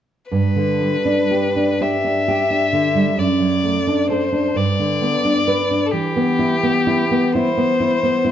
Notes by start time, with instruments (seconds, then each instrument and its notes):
0.31 nylon-string guitar G2, violin B4
0.56 nylon-string guitar D3
0.81 nylon-string guitar G3
1.05 nylon-string guitar D4
1.31 nylon-string guitar G4
1.56 nylon-string guitar D4
1.81 nylon-string guitar G4, violin E5
2.04 nylon-string guitar D4
2.28 nylon-string guitar G4
2.50 nylon-string guitar D4
2.73 nylon-string guitar D3
2.95 nylon-string guitar G3
3.18 nylon-string guitar F#2, violin D5
3.40 nylon-string guitar F#3
3.64 nylon-string guitar A3
3.87 nylon-string guitar D4
4.09 nylon-string guitar A4, violin C5
4.32 nylon-string guitar D4
4.55 nylon-string guitar G2, violin D5
4.79 nylon-string guitar D3
5.02 nylon-string guitar B3
5.25 nylon-string guitar D4
5.48 nylon-string guitar B4
5.71 nylon-string guitar D4
5.86 violin A4
5.91 nylon-string guitar E3, violin G4
6.16 nylon-string guitar B3
6.39 nylon-string guitar E4
6.63 nylon-string guitar B3
6.87 nylon-string guitar E4
7.11 nylon-string guitar B3
7.33 nylon-string guitar E4, violin C5
7.57 nylon-string guitar B3
7.80 nylon-string guitar E4
8.03 nylon-string guitar B3
8.25 nylon-string guitar E4